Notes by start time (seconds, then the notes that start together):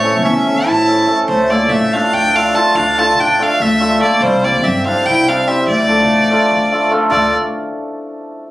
Already playing: A1 A3 C#5
0.03 A3 C#4 E4 A4
0.23 E2 C#4 E5
0.46 A3 C#4 E4 A4
0.66 A1 E4 A5
0.87 A3 C#4 E4 A4
1.07 A3 C#4 E4 A4
1.28 D2 A3 C5
1.50 A3 A#3 D4 F4 A4 D5
1.70 A1 A3 E5
1.93 A3 D4 F4 A4 F5
2.13 D2 D4 G5
2.35 A3 D4 F4 A4 F5
2.55 A3 D4 F4 A4 A5
2.74 D2 D4 F5
2.97 A3 D4 F4 A4 A5
3.17 A1 D4 G5
3.39 A3 D4 F4 A4 F5
3.60 D2 A3 E5
3.80 A3 D4 F4 A4
3.99 A3 A#3 D4 F4 A4 D5
4.21 C2 G3 C5
4.43 G3 A#3 C4 E4 G4 D5
4.63 G2 C4 E5
4.85 G3 C4 D4 E4 G4 F5
5.06 C2 E4 G5
5.27 G3 C4 D4 E4 G4 F5
5.47 G3 C4 E4 G4 E5
5.67 D2 A3 D5
5.88 A3 D4 F4 A4
6.10 A1
6.30 A3 D4 F4 A4
6.52 D2
6.72 A3 D4 F4 A4
6.91 A3 D4 F4 A4
7.10 D2 A3 D4 F4 A4 D5